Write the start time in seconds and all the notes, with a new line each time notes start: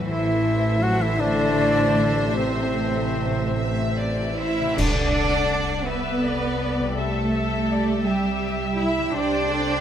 Already playing: A2 A3
0.01 E4
0.06 E3 A3 E4 E5
0.10 A1 C5 E5
0.82 F#3 F#4 F#5
1.01 E3 E4 E5
1.20 D3 D4 D5
2.36 C3 A3 C4 E4 C5
3.58 E5
3.97 D5
4.38 E4 C5 E5
4.60 C3
4.64 A3
4.69 F#4
4.73 D4 A4 B4 D5
4.77 C2 F#5, concert bass drum, crash
5.88 B3 A4 B4 D5 E5
6.25 D5
6.61 D5
6.80 C3
6.84 G3
6.89 E4
6.93 G4 A4 B4 E5
6.98 A3
7.33 E5
7.70 D5
8.06 G3 G4 E5
8.79 E4 E5
8.98 C3
9.02 G3
9.07 G4
9.11 D4 G4 C5
9.15 C2 D5 G5
9.51 A4